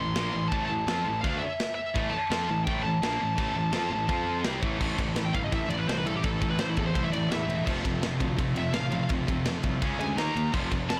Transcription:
Already playing: picked electric bass A1, lead electric guitar C6
0.00 distorted electric guitar A2 E3
0.15 picked electric bass A#1, distorted electric guitar A#2 F3 A#3, snare, crash
0.33 picked electric bass A1, distorted electric guitar A2 E3
0.48 picked electric bass A1, distorted electric guitar A2 E3, lead electric guitar A5, kick, crash
0.52 distorted electric guitar A3
0.65 picked electric bass A1, distorted electric guitar A2 E3, lead electric guitar A5
0.87 picked electric bass F2, distorted electric guitar F3 C4 F4, snare, crash
1.04 picked electric bass A1, distorted electric guitar A2 E3
1.21 picked electric bass D2, distorted electric guitar D3 A3 D4, lead electric guitar F5, kick, crash
1.39 lead electric guitar E5
1.60 snare, crash
1.75 lead electric guitar E5
1.95 picked electric bass A1, distorted electric guitar A2 E3 A3, kick, crash
2.10 lead electric guitar A5, muted distorted electric guitar stroke, muted picked electric bass stroke
2.30 picked electric bass F2, distorted electric guitar F3 C4 F4, snare, crash
2.48 picked electric bass A1, distorted electric guitar A2 E3
2.64 picked electric bass A1, distorted electric guitar A2 E3 A3, lead electric guitar G5, kick, crash
2.83 picked electric bass A1, distorted electric guitar A2 E3, lead electric guitar A5
3.02 picked electric bass A#1, distorted electric guitar A#2 F3 A#3, snare, crash
3.20 picked electric bass A1, distorted electric guitar A2 E3
3.37 picked electric bass A1, distorted electric guitar A2 E3 A3, kick, crash
3.55 picked electric bass A1, distorted electric guitar A2 E3
3.73 picked electric bass F2, distorted electric guitar F3 C4 F4, snare, crash
3.90 picked electric bass A1, distorted electric guitar A2 E3
4.09 picked electric bass F2, distorted electric guitar F3 C4 F4, kick, crash
4.44 picked electric bass C2, distorted electric guitar C3 G3 C4, snare, crash
4.62 picked electric bass A1, distorted electric guitar A2 E3 A3, kick
4.79 picked electric bass A1, distorted electric guitar A2 E3 A3 C4 E4 A4, kick, crash
4.97 picked electric bass A1, distorted electric guitar A2 E3 A3 C4 E4 A4, kick, ride
5.14 picked electric bass A1, distorted electric guitar A2 E3 A3 C4 E4 A4, snare, ride
5.25 lead electric guitar G5
5.33 picked electric bass G1, distorted electric guitar A2 E3 A3 C4 E4 A4, lead electric guitar F5, kick, ride
5.44 lead electric guitar D#5
5.51 picked electric bass A1, distorted electric guitar A2 E3 A3 C4 E4 A4, lead electric guitar E5, kick, ride
5.69 picked electric bass A1, distorted electric guitar A2 E3 A3 C4 E4 A4, lead electric guitar D5, ride
5.79 lead electric guitar B4
5.87 picked electric bass C2, distorted electric guitar A2 E3 A3 C4 E4 A4, lead electric guitar C5, snare, ride
5.98 lead electric guitar B4
6.05 distorted electric guitar A2 E3 A3 C4 E4 A4, lead electric guitar A4, ride
6.15 lead electric guitar G4
6.23 picked electric bass A1, distorted electric guitar A2 E3 A3 C4 E4 A4, lead electric guitar A4, kick, ride
6.41 picked electric bass A1, distorted electric guitar A2 E3 A3 C4 E4 A4, kick, ride
6.50 lead electric guitar B4
6.59 picked electric bass A1, distorted electric guitar A2 E3 A3 C4 E4 A4, lead electric guitar C5, snare, ride
6.70 lead electric guitar E4
6.77 picked electric bass E2, distorted electric guitar A2 E3 A3 C4 E4 A4, lead electric guitar A4, kick, ride
6.86 lead electric guitar C5
6.95 picked electric bass C2, distorted electric guitar A2 E3 A3 C4 E4 A4, lead electric guitar C5, kick, ride
7.04 lead electric guitar E5
7.12 picked electric bass A1, distorted electric guitar A2 E3 A3 C4 E4 A4, lead electric guitar D5, ride
7.30 picked electric bass E2, distorted electric guitar A2 E3 A3 C4 E4 A4, lead electric guitar E5, snare, ride
7.47 picked electric bass E1, distorted electric guitar A2 E3 A3 C4 E4 A4, ride
7.64 picked electric bass F1, distorted electric guitar F2 C3 F3 A3 C4 F4 A4, kick, crash
7.82 picked electric bass F1, distorted electric guitar F2 C3 F3 A3 C4 F4, kick, ride
7.86 distorted electric guitar C3 A4
8.01 picked electric bass F1, distorted electric guitar F2 C3 F3 A3 C4 F4 A4, snare, ride
8.19 picked electric bass D2, distorted electric guitar F2 C3 F3 A3 C4 F4 A4, kick, ride
8.37 picked electric bass F1, distorted electric guitar F2 C3 F3 A3 C4 F4 A4, kick, ride
8.55 picked electric bass F1, distorted electric guitar F2 C3 F3 A3 C4 F4 A4, lead electric guitar E5, ride
8.73 picked electric bass A1, distorted electric guitar F2 C3 F3 A3 C4 F4 A4, lead electric guitar F5, snare, ride
8.91 distorted electric guitar F2 C3 F3 A3 C4 F4 A4, ride
9.09 picked electric bass F1, distorted electric guitar F2 C3 F3 A3 C4 F4 A4, kick, ride
9.27 picked electric bass F1, distorted electric guitar F2 C3 F3 A3 C4 F4 A4, kick, ride
9.45 picked electric bass F1, distorted electric guitar F2 C3 F3 A3 C4 F4 A4, snare, ride
9.63 picked electric bass C2, distorted electric guitar F2 C3 F3 A3 C4 F4 A4, kick, ride
9.82 picked electric bass C#2, distorted electric guitar C#3 G#3 C#4 G#4, kick, ride
9.99 picked electric bass D2, distorted electric guitar C#3 G#3 C#4 G#4, lead electric guitar G#5, ride
10.16 picked electric bass D#2, distorted electric guitar D#3 A#3 D#4 A#4, lead electric guitar A#5, snare, ride
10.34 picked electric bass D#2, distorted electric guitar D#3 A#3 D#4 A#4, ride
10.52 picked electric bass F1, distorted electric guitar F2 C3 F3 C4 F4 A4, kick, crash
10.70 picked electric bass F1, distorted electric guitar F2 C3 F3 C4 F4 A4, kick, ride
10.88 picked electric bass F1, distorted electric guitar F2 C3 F3 C4 F4 A4, lead electric guitar A5, snare, ride

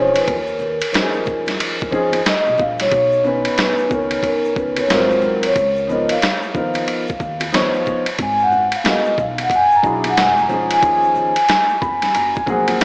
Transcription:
Already playing: upright bass E1, grand piano F3 C#4 D#4 G#4, vibraphone C#5
0.14 vibraphone B4, ride, shaker
0.26 upright bass D#2, vibraphone A#4, kick, ride, shaker
0.47 shaker
0.59 low conga, shaker
0.80 ride, shaker
0.92 grand piano F3 C#4 D#4 F#4, snare, hi-hat pedal, ride, shaker
1.02 grand piano G#4
1.13 shaker
1.26 upright bass F2, kick, low conga, shaker
1.46 snare, ride, high conga, shaker
1.60 ride, high conga, shaker
1.80 kick, shaker
1.91 upright bass F2, grand piano F3 C#4 D#4 G#4, kick, shaker
2.12 ride, high conga, shaker
2.25 vibraphone D#5, snare, hi-hat pedal, ride, shaker
2.46 upright bass B1, shaker
2.58 upright bass A#1, vibraphone F5, kick, high conga, low conga, shaker
2.79 vibraphone C#5, snare, ride, shaker
2.91 upright bass B1, kick, ride, shaker
3.12 shaker
3.23 grand piano D#3 B3 C#4 B4, vibraphone B4, low conga, shaker
3.45 ride, shaker
3.58 snare, hi-hat pedal, ride, shaker
3.78 shaker
3.89 upright bass C#2, grand piano D#3 B3 C#4 A#4, kick, low conga, shaker
3.93 vibraphone C#5
4.11 ride, high conga, shaker
4.23 vibraphone A#4, kick, ride, high conga, shaker
4.45 shaker
4.56 upright bass C#2, vibraphone B4, kick, shaker
4.77 vibraphone C#5, ride, high conga, shaker
4.88 upright bass G#1, grand piano F#3 C4 F4 A#4, snare, hi-hat pedal, ride, shaker
4.93 vibraphone C5
5.10 shaker
5.22 high conga, low conga, shaker
5.26 vibraphone A#4
5.43 vibraphone C#5, ride, shaker
5.56 upright bass C#2, kick, ride, shaker
5.76 shaker
5.87 grand piano F3 B3 D#4 A#4, vibraphone D#5, low conga, shaker
6.09 vibraphone F5, ride, shaker
6.22 snare, hi-hat pedal, ride, shaker
6.43 shaker
6.53 upright bass D#2, grand piano F3 B3 D#4 A#4, kick, low conga, shaker
6.74 ride, high conga, shaker
6.87 ride, high conga, shaker
7.08 kick, shaker
7.20 upright bass D#2, kick, shaker
7.40 ride, high conga, shaker
7.52 grand piano F3 B3 D#4 C#5, snare, hi-hat pedal, ride, shaker
7.74 shaker
7.86 kick, high conga, low conga, shaker
8.06 ride, shaker
8.19 upright bass G#1, vibraphone G#5, kick, ride, shaker
8.39 vibraphone F#5, shaker
8.51 low conga, shaker
8.72 ride, shaker
8.76 vibraphone F5
8.84 grand piano G#3 B3 F#4 A#4, snare, hi-hat pedal, ride, shaker
8.89 vibraphone D#5
9.05 shaker
9.18 upright bass B1, vibraphone F5, kick, low conga, shaker
9.38 ride, high conga, shaker
9.43 vibraphone F#5
9.50 kick, ride, high conga, shaker
9.56 vibraphone G#5
9.71 shaker
9.76 vibraphone A#5
9.82 upright bass B1, grand piano F#3 D4 E4 G#4, kick, shaker
10.04 ride, high conga, shaker
10.09 vibraphone F#5
10.17 upright bass E1, vibraphone G#5, snare, hi-hat pedal, ride, shaker
10.38 vibraphone A#5, shaker
10.48 grand piano F3 C#4 D#4 G#4, high conga, low conga, shaker
10.70 vibraphone G#5, ride, shaker
10.81 upright bass D#2, grand piano F3 C#4 D#4 G#4, kick, ride, shaker
11.03 shaker
11.15 low conga, shaker
11.36 ride, shaker
11.48 snare, hi-hat pedal, ride, shaker
11.69 shaker
11.81 upright bass F2, grand piano B5, kick, low conga, shaker
12.02 snare, ride, high conga, shaker
12.15 upright bass F#1, grand piano A#5, ride, high conga, shaker
12.35 grand piano G#5, kick, shaker
12.46 upright bass F1, grand piano F3 F#3 A#3 G#4 F#5, kick, shaker
12.68 upright bass F#1, ride, high conga, shaker
12.80 grand piano D#5 F5, hi-hat pedal, ride, shaker

